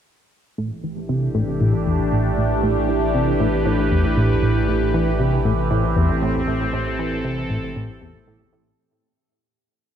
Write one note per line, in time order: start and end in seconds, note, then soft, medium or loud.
0.58 8.76 A1 medium
0.58 0.71 A2 medium
0.58 8.79 E3 medium
0.75 8.79 A3 medium
0.75 8.79 G4 medium
0.84 1.03 E3 medium
0.96 5.42 D4 medium
1.09 1.28 C3 medium
1.35 1.42 A2 medium
1.61 1.73 A2 medium
1.86 1.99 E2 medium
2.12 2.31 A2 medium
2.38 2.57 A2 medium
2.55 6.47 B4 medium
2.63 2.76 A2 medium
2.89 3.08 E3 medium
3.14 3.33 C3 medium
3.40 3.48 A2 loud
3.66 3.78 A2 medium
3.91 4.04 E2 medium
4.17 4.36 A2 medium
4.43 4.62 A2 medium
4.68 4.81 A2 medium
4.94 5.13 E3 medium
5.19 5.38 C3 medium
5.26 8.79 C4 medium
5.45 5.53 A2 loud
5.71 5.83 A2 medium
5.96 6.09 E2 medium
6.22 6.41 A2 medium
6.32 8.79 A4 medium
6.47 6.67 A2 medium
6.73 6.86 A2 medium
6.99 7.18 E3 medium
7.25 7.44 C3 medium
7.50 7.58 A2 medium
7.76 7.89 A2 medium
8.02 8.14 E2 medium
8.27 8.46 A2 medium
8.53 8.72 A2 medium